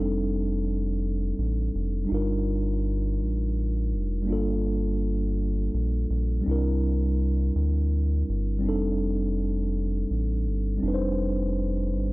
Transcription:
0.00 1.33 F1 loud
0.00 2.03 G3 medium
0.00 2.04 C4 medium
0.00 2.05 D4 medium
0.00 2.06 D#4 medium
0.00 2.08 A4 medium
1.38 1.70 A1 medium
1.75 2.06 F1 medium
2.05 4.21 G3 medium
2.05 4.22 D4 medium
2.09 3.22 G1 loud
2.09 4.23 D#4 medium
2.09 4.24 F4 medium
2.14 4.26 A#4 medium
3.20 3.95 A1 medium
3.93 4.31 F1 medium
4.22 6.39 G3 medium
4.22 6.40 A#3 medium
4.28 5.69 G1 loud
4.28 6.41 D4 medium
4.28 6.43 F4 medium
4.33 6.44 A4 medium
5.74 6.06 A#1 medium
6.10 6.42 A#1 medium
6.41 8.57 G3 medium
6.41 8.58 C4 medium
6.46 7.51 C2 loud
6.46 8.60 D4 medium
6.46 8.61 E4 medium
6.51 8.62 A#4 medium
7.55 8.24 D2 loud
8.29 8.66 G1 medium
8.58 10.75 G3 medium
8.58 10.76 C4 medium
8.64 10.05 F1 loud
8.64 10.78 D4 medium
8.64 10.79 D#4 medium
8.69 10.80 A4 medium
10.10 10.48 A1 medium
10.47 10.79 G1 medium
10.78 12.13 G3 medium
10.78 12.13 C4 medium
10.83 11.93 F1 loud
10.83 12.13 D4 medium
10.83 12.13 D#4 medium
10.88 10.91 B4 medium
10.94 12.13 C5 medium
11.92 12.13 G1 medium

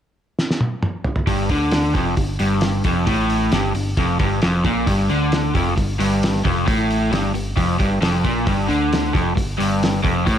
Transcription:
0.39 snare medium
0.51 snare medium
0.61 high tom medium
0.83 mid tom medium
1.04 floor tom medium
1.16 floor tom loud
1.27 1.48 G1 loud
1.27 1.49 G2 medium
1.27 kick loud
1.27 open hi-hat medium
1.49 1.91 D2 medium
1.49 1.94 D3 medium
1.49 kick loud
1.49 open hi-hat medium
1.71 snare loud
1.71 open hi-hat medium
1.94 2.16 F1 medium
1.94 2.16 F2 medium
1.94 kick loud
1.94 open hi-hat medium
2.17 2.38 G1 medium
2.17 2.35 G2 medium
2.17 kick medium
2.17 open hi-hat medium
2.39 2.82 G1 medium
2.39 2.84 G2 medium
2.39 open hi-hat medium
2.61 snare loud
2.61 open hi-hat medium
2.84 3.05 F1 medium
2.84 3.07 F2 medium
2.84 kick loud
2.84 open hi-hat medium
3.07 3.49 A1 medium
3.07 3.51 A2 loud
3.07 kick loud
3.07 open hi-hat medium
3.30 open hi-hat medium
3.52 3.73 G1 loud
3.52 3.74 G2 loud
3.52 snare loud
3.52 open hi-hat medium
3.75 3.96 G1 medium
3.75 3.93 G2 medium
3.75 open hi-hat medium
3.97 4.18 F1 medium
3.97 4.19 F2 loud
3.97 kick loud
3.97 open hi-hat medium
4.19 4.40 G1 medium
4.19 4.41 G2 medium
4.19 kick loud
4.19 open hi-hat medium
4.42 4.64 F1 loud
4.42 4.64 F2 loud
4.42 snare loud
4.42 open hi-hat medium
4.64 4.85 A#1 medium
4.64 4.86 A#2 loud
4.64 kick loud
4.64 open hi-hat soft
4.86 5.08 G1 loud
4.86 5.08 G2 medium
4.86 kick loud
4.86 open hi-hat medium
5.10 5.52 D2 medium
5.10 5.54 D3 medium
5.10 open hi-hat soft
5.32 snare loud
5.32 open hi-hat medium
5.54 5.76 F1 medium
5.54 5.76 F2 loud
5.54 kick loud
5.54 open hi-hat medium
5.76 5.98 G1 medium
5.76 5.94 G2 medium
5.76 kick medium
5.76 open hi-hat medium
5.99 6.41 G1 medium
5.99 6.43 G2 medium
5.99 open hi-hat medium
6.23 snare loud
6.23 open hi-hat medium
6.36 snare soft
6.44 6.66 F1 medium
6.44 6.66 F2 loud
6.44 kick loud
6.44 open hi-hat medium
6.66 7.09 A1 medium
6.66 7.10 A2 loud
6.66 kick loud
6.66 open hi-hat medium
6.91 open hi-hat medium
7.11 7.32 G1 loud
7.11 7.33 G2 loud
7.11 snare loud
7.11 open hi-hat medium
7.33 7.55 G1 medium
7.33 7.52 G2 medium
7.33 open hi-hat medium
7.56 7.78 F1 medium
7.56 7.78 F2 loud
7.56 kick loud
7.56 open hi-hat medium
7.79 8.00 G1 medium
7.79 8.01 G2 medium
7.79 kick loud
7.79 open hi-hat medium
8.01 8.22 F1 medium
8.01 8.23 F2 loud
8.01 snare loud
8.01 open hi-hat medium
8.24 8.45 A#1 medium
8.24 8.46 A#2 medium
8.24 kick medium
8.24 open hi-hat soft
8.46 8.68 G1 medium
8.46 8.68 G2 loud
8.46 kick loud
8.46 open hi-hat medium
8.69 9.11 D2 medium
8.69 9.13 D3 loud
8.69 open hi-hat soft
8.93 snare loud
8.93 open hi-hat medium
9.13 9.35 F1 medium
9.13 9.35 F2 loud
9.13 kick loud
9.13 open hi-hat medium
9.35 9.58 G1 medium
9.35 9.54 G2 medium
9.35 kick medium
9.35 open hi-hat medium
9.58 10.01 G1 medium
9.58 10.03 G2 medium
9.58 open hi-hat medium
9.83 snare loud
9.83 open hi-hat medium
10.03 10.25 F1 medium
10.03 10.25 F2 loud
10.03 kick medium
10.03 open hi-hat medium
10.26 10.38 A1 loud
10.26 10.38 A2 medium
10.26 kick medium
10.26 open hi-hat medium

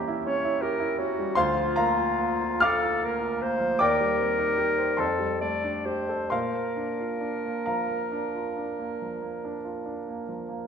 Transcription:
0.00 1.31 A#2 medium
0.00 1.36 E3 medium
0.00 1.18 G3 medium
0.00 0.26 C#4 medium
0.00 0.08 E4 medium
0.00 0.63 G4 medium
0.00 1.32 A#4 medium
0.00 1.36 C5 medium
0.00 1.31 G5 medium
0.00 1.34 A#5 loud
0.00 1.35 C6 loud
0.08 0.36 E4 medium
0.26 0.55 C#4 medium
0.26 0.63 C#5 medium
0.44 0.73 E4 medium
0.62 0.91 G4 medium
0.62 0.98 A#4 medium
0.80 1.09 E4 medium
0.98 1.27 C#4 medium
0.98 1.39 F#4 medium
1.18 1.36 G3 medium
1.35 3.76 D2 medium
1.35 2.66 F4 medium
1.35 1.73 C5 medium
1.35 1.73 F5 medium
1.35 1.75 C6 loud
1.55 1.88 F3 medium
1.76 2.11 A#3 medium
1.76 2.59 A#4 medium
1.76 2.59 F5 medium
1.76 2.63 A#5 medium
1.98 2.33 F4 medium
2.19 2.54 A#3 medium
2.41 2.74 F4 medium
2.60 2.94 A#3 medium
2.60 3.06 A4 medium
2.60 3.75 F5 medium
2.60 3.75 D6 medium
2.60 3.78 F6 loud
2.83 3.13 F4 medium
3.02 3.33 A#3 medium
3.02 3.43 A#4 medium
3.20 3.51 F4 medium
3.41 3.72 A#3 soft
3.41 3.82 C5 medium
3.60 3.79 F3 soft
3.79 4.96 D#2 medium
3.79 5.01 A#4 medium
3.79 4.96 D5 medium
3.79 4.96 G5 medium
3.79 4.99 D6 medium
4.00 4.31 G3 soft
4.19 4.51 C4 soft
4.39 4.71 D#4 soft
4.58 4.91 G4 soft
4.78 4.97 C5 soft
4.97 6.27 F2 medium
4.97 5.40 A4 medium
4.97 6.27 C5 medium
4.97 6.27 A5 medium
4.97 6.29 C6 medium
5.19 5.54 G3 soft
5.41 5.77 A3 soft
5.41 5.87 D5 medium
5.64 6.00 D4 soft
5.85 6.22 G4 soft
5.85 6.32 C5 medium
6.09 6.32 A4 soft
6.30 8.96 A#2 soft
6.30 10.67 A#4 medium
6.30 7.62 C5 medium
6.30 7.62 F5 medium
6.30 7.65 C6 medium
6.53 6.89 A#3 soft
6.76 7.12 D4 soft
7.00 7.35 F4 soft
7.21 7.57 D4 soft
7.45 7.80 A#3 soft
7.66 8.03 F3 soft
7.66 10.25 A#4 soft
7.66 10.25 F5 soft
7.66 10.29 A#5 medium
7.88 8.25 A#3 soft
8.12 8.48 D4 soft
8.35 8.70 F4 soft
8.57 8.92 D4 soft
8.79 9.13 A#3 soft
9.02 9.36 F3 soft
9.22 9.56 A#3 soft
9.45 9.78 D4 soft
9.65 9.99 F4 soft
9.86 10.20 D4 soft
10.08 10.42 A#3 soft
10.28 10.63 F3 soft
10.49 10.67 A#3 soft

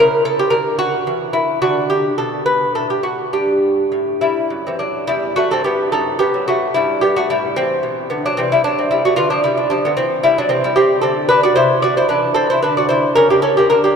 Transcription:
0.00 0.42 C#3 medium
0.00 1.32 E4 soft
0.00 0.25 A#4 loud
0.25 0.39 A4 loud
0.39 0.53 G4 medium
0.50 0.95 D3 medium
0.50 0.78 A#4 medium
0.79 1.32 F#4 loud
1.07 1.51 E3 medium
1.33 1.61 E4 medium
1.62 2.07 D3 medium
1.62 3.30 D4 soft
1.62 1.89 F#4 medium
1.90 2.17 G4 medium
2.18 2.64 B2 medium
2.18 2.45 A4 medium
2.46 2.74 B4 medium
2.75 3.22 A2 medium
2.75 2.90 A4 medium
2.90 3.05 G4 medium
3.03 3.32 F#4 medium
3.33 3.81 G2 medium
3.33 4.78 D4 soft
3.33 4.18 G4 medium
3.92 4.39 A2 soft
4.21 4.63 G3 medium
4.21 4.64 E4 medium
4.50 4.97 F#2 soft
4.67 4.81 E3 soft
4.67 4.80 C4 medium
4.79 5.07 F#3 soft
4.79 5.07 D4 medium
5.07 5.42 E2 medium
5.07 5.35 G3 medium
5.07 5.35 E4 medium
5.36 5.50 A3 medium
5.36 5.51 F#4 medium
5.51 5.84 G2 medium
5.51 5.65 C4 medium
5.51 5.64 A4 medium
5.64 5.91 B3 medium
5.64 5.91 G4 medium
5.92 6.26 F#2 medium
5.92 6.18 D#4 medium
5.92 6.19 A4 medium
6.19 6.46 B3 medium
6.19 6.46 G4 medium
6.34 6.67 F#3 medium
6.48 6.74 A3 medium
6.48 6.74 F#4 medium
6.74 7.19 G2 medium
6.74 7.01 G3 medium
6.74 7.01 E4 medium
7.01 7.15 B3 medium
7.01 7.15 G4 medium
7.16 7.29 A3 medium
7.16 7.30 F#4 medium
7.30 7.73 A2 medium
7.30 7.55 G3 medium
7.30 7.56 E4 medium
7.56 8.07 E3 medium
7.56 8.08 C4 medium
7.83 8.26 B2 medium
8.10 8.23 D3 medium
8.10 8.24 B3 medium
8.26 8.37 F#3 medium
8.26 8.38 D4 medium
8.37 8.70 C3 medium
8.37 8.50 E3 medium
8.37 8.51 C4 medium
8.52 8.64 G3 medium
8.52 8.64 E4 medium
8.64 8.89 F#3 medium
8.64 8.90 D4 medium
8.79 9.06 C4 medium
8.91 9.04 G3 medium
8.91 9.04 E4 medium
9.05 9.17 A3 medium
9.05 9.16 F#4 medium
9.16 9.49 D3 medium
9.16 9.30 B3 medium
9.16 9.30 F4 loud
9.30 9.44 F3 medium
9.30 9.43 D4 medium
9.44 9.69 G3 medium
9.44 9.69 E4 medium
9.57 9.69 D4 medium
9.70 9.83 F3 medium
9.70 9.83 D4 medium
9.85 9.97 D3 medium
9.85 9.96 B3 medium
9.97 10.22 E3 medium
9.97 10.22 C4 medium
10.23 10.36 G3 medium
10.23 10.37 E4 medium
10.38 10.50 F#3 medium
10.38 10.49 D4 medium
10.49 10.92 C3 medium
10.49 10.63 E3 medium
10.49 10.63 C4 medium
10.64 10.77 G3 medium
10.64 10.77 E4 medium
10.76 11.01 C4 medium
10.76 11.01 G4 medium
11.01 11.45 D3 medium
11.01 11.28 C4 medium
11.01 11.28 A4 medium
11.29 11.42 D4 medium
11.29 11.42 B4 loud
11.43 11.56 F#4 medium
11.43 11.55 D5 medium
11.56 11.99 C3 medium
11.56 11.81 E4 medium
11.56 11.82 C5 loud
11.82 11.96 F#4 medium
11.82 11.96 D5 loud
11.97 12.09 E4 medium
11.97 12.08 C5 medium
12.09 12.52 E3 medium
12.09 12.34 D4 medium
12.09 12.34 B4 medium
12.34 12.48 C4 medium
12.34 12.48 A4 loud
12.50 12.63 E4 medium
12.50 12.62 C5 medium
12.62 13.06 D3 medium
12.62 12.76 D4 medium
12.62 12.76 B4 medium
12.77 12.90 F#4 medium
12.77 12.88 D5 medium
12.89 13.15 E4 medium
12.89 13.15 C5 loud
13.15 13.59 C#3 medium
13.15 13.29 C#4 medium
13.15 13.29 A#4 loud
13.30 13.43 A#3 medium
13.30 13.42 G4 medium
13.42 13.55 C#4 medium
13.42 13.56 A4 medium
13.57 13.70 A#3 medium
13.57 13.69 G4 medium
13.70 13.96 D3 medium
13.70 13.82 D4 medium
13.70 13.83 A#4 medium
13.84 13.96 A#3 medium
13.84 13.96 G4 medium

